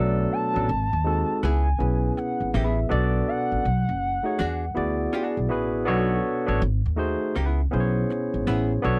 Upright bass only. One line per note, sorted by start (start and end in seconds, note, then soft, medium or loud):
0.00 0.24 B1 medium
0.56 0.66 A1 medium
0.69 0.87 G#1 medium
0.93 1.22 D#2 medium
1.43 1.72 C#2 medium
1.80 2.09 B1 medium
2.40 2.51 G#1 medium
2.54 2.83 A1 medium
2.91 3.20 B1 medium
3.52 3.62 A1 medium
3.65 3.83 B1 medium
3.89 4.18 F#1 medium
4.40 4.68 E2 medium
4.77 5.06 D2 medium
5.37 5.51 B1 medium
5.51 5.88 A1 medium
5.88 6.17 B1 loud
6.48 6.59 A1 medium
6.62 6.80 G#1 loud
6.86 7.14 D#2 medium
7.36 7.65 C#2 medium
7.73 8.02 B1 medium
8.34 8.44 G#1 medium
8.47 8.76 A1 medium
8.84 8.99 B1 medium